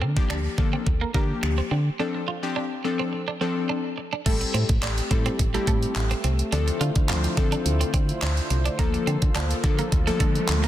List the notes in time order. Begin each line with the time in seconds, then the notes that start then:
0.01 D3 C4
0.16 F3 A#3 D4 G4, kick
0.30 D2 D4, finger snap
0.58 D3 F3 A#3 D4 A4, muted clean electric guitar stroke, kick
0.73 C4
0.86 D2, muted clean electric guitar stroke, kick
1.01 A#3
1.14 D3 F3 A#3 D4 G4, kick
1.43 D2, finger snap, muted clean electric guitar stroke
1.58 C4
1.71 D3 C4
1.99 F3 C4 D4 A4
2.15 muted clean electric guitar stroke
2.28 F4
2.43 F3 C4 D4 G4
2.56 D4
2.84 F3 C4 D4 A4, muted clean electric guitar stroke
3.00 C4
3.13 muted clean electric guitar stroke
3.28 D4
3.41 F3 C4 D4 A4
3.69 D4
3.98 muted clean electric guitar stroke
4.13 D4
4.26 A1 G3 A3 C4 E4 G4 A4, kick, closed hi-hat, crash
4.41 muted clean electric guitar stroke, closed hi-hat
4.54 A2 C4, closed hi-hat
4.69 A2, kick, closed hi-hat
4.83 A1 D4, clap, closed hi-hat
4.98 closed hi-hat
5.11 A2 G3 C4 E4 A4, muted clean electric guitar stroke, kick, closed hi-hat
5.26 C4, closed hi-hat
5.39 A1, muted clean electric guitar stroke, kick, closed hi-hat
5.54 G3 A3 C4 E4 G4, closed hi-hat
5.67 A2 A3, kick, closed hi-hat
5.83 closed hi-hat
5.96 A1, muted clean electric guitar stroke, clap, closed hi-hat
6.11 C4, closed hi-hat
6.24 C2 C4, closed hi-hat
6.39 closed hi-hat
6.52 D2 D3 F3 C4 D4 E4 F4 A4 C5, closed hi-hat
6.68 muted clean electric guitar stroke, closed hi-hat
6.81 D3 F4, closed hi-hat
6.95 D3, kick, closed hi-hat
7.09 D2 F3 C4 D4 F4 C5, clap, closed hi-hat
7.24 closed hi-hat
7.37 D3 F3 C4 D4 A4, muted clean electric guitar stroke, kick, closed hi-hat
7.52 D4, closed hi-hat
7.66 D2, muted clean electric guitar stroke, closed hi-hat
7.81 C4, closed hi-hat
7.94 D3 C4, kick, closed hi-hat
8.09 closed hi-hat
8.22 D2 D4, clap, closed hi-hat
8.37 closed hi-hat
8.50 C2, muted clean electric guitar stroke, closed hi-hat
8.66 D4, closed hi-hat
8.79 D2 F3 A#3 D4 F4 A4, kick, closed hi-hat, riser
8.94 muted clean electric guitar stroke, closed hi-hat
9.07 D3 C4, closed hi-hat
9.22 D3, kick, closed hi-hat
9.35 D2 D4, clap, closed hi-hat
9.51 closed hi-hat
9.63 D3 F3 A#3 D4 A4, muted clean electric guitar stroke, kick, closed hi-hat
9.79 A#3, closed hi-hat
9.92 D2, muted clean electric guitar stroke, kick, closed hi-hat
10.07 F3 A3 A#3 D4 A4, closed hi-hat
10.20 D3 A3, kick, closed hi-hat
10.35 closed hi-hat
10.49 D2, muted clean electric guitar stroke, clap, closed hi-hat
10.64 A#3, closed hi-hat